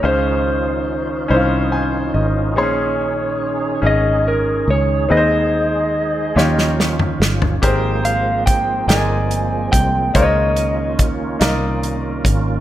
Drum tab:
HH |------------|------------|------------|x-x-x-x-x-x-|
SD |------------|------------|------ooo-o-|------o-----|
T2 |------------|------------|---------o--|------------|
FT |------------|------------|-----------o|------------|
BD |------------|------------|------------|o---o-----o-|

HH |x-x-x-x-x-x-|
SD |------o-----|
T2 |------------|
FT |------------|
BD |o---o-----o-|